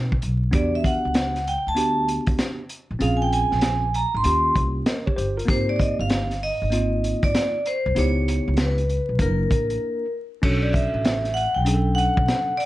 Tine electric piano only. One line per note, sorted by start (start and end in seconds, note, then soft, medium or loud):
0.00 0.14 C4 medium
0.00 0.14 D#4 medium
0.00 0.15 F#4 medium
0.00 0.15 B4 medium
0.51 1.37 B3 medium
0.51 1.38 D4 medium
0.51 1.38 F#4 medium
0.51 1.39 G4 medium
1.75 2.61 B3 medium
1.75 2.61 D4 medium
1.75 2.62 F#4 medium
1.75 2.62 G4 medium
2.99 3.85 C4 medium
2.99 3.85 C#4 medium
2.99 3.86 F4 medium
2.99 3.86 G#4 medium
4.23 5.09 A#3 medium
4.23 5.09 C#4 medium
4.23 4.87 F4 medium
4.23 4.87 G4 medium
4.87 5.06 A#4 medium
4.87 5.06 D#5 medium
5.07 5.16 G4 medium
5.07 5.17 C#5 medium
5.16 5.36 G4 medium
5.16 5.36 C5 medium
5.37 5.67 F4 medium
5.37 5.67 A#4 medium
5.45 6.32 A#3 medium
5.45 6.32 C4 medium
5.45 6.33 D#4 medium
5.45 6.33 G4 medium
6.70 7.56 A#3 medium
6.70 7.57 C4 medium
6.70 7.57 D#4 medium
6.70 7.57 F4 medium
7.95 8.80 B3 medium
7.95 8.81 D#4 medium
7.95 8.81 E4 medium
7.95 8.82 G4 medium
9.19 10.04 A#3 medium
9.19 10.05 D4 medium
9.19 10.05 E4 medium
9.19 10.05 A#4 medium
10.42 11.27 C#4 medium
10.42 11.28 D4 medium
10.42 11.28 F#4 medium
10.42 11.29 A4 medium
11.65 12.52 F#3 medium
11.65 12.51 C#4 medium
11.65 12.51 D4 medium
11.65 11.76 G#4 medium
11.74 12.55 A4 medium